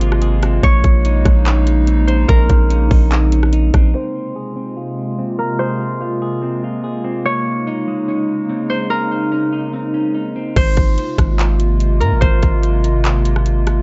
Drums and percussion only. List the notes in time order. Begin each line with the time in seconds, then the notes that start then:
0.01 closed hi-hat
0.12 cross-stick
0.22 closed hi-hat
0.43 cross-stick, closed hi-hat
0.63 kick, closed hi-hat
0.84 kick, closed hi-hat
1.05 closed hi-hat
1.25 kick, cross-stick, closed hi-hat
1.46 clap, closed hi-hat
1.67 closed hi-hat
1.87 closed hi-hat
2.08 closed hi-hat
2.29 kick, closed hi-hat
2.50 kick, closed hi-hat
2.70 closed hi-hat
2.91 kick, open hi-hat
3.12 clap, closed hi-hat
3.32 closed hi-hat
3.43 cross-stick
3.53 closed hi-hat
3.74 kick, cross-stick, closed hi-hat
10.56 kick, closed hi-hat, crash
10.77 kick, closed hi-hat
10.98 closed hi-hat
11.18 kick, cross-stick, closed hi-hat
11.39 clap, closed hi-hat
11.60 closed hi-hat
11.80 closed hi-hat
12.01 closed hi-hat
12.22 kick, closed hi-hat
12.43 kick, closed hi-hat
12.63 closed hi-hat
12.84 closed hi-hat
13.05 clap, closed hi-hat
13.25 closed hi-hat
13.36 cross-stick
13.46 closed hi-hat
13.67 cross-stick, closed hi-hat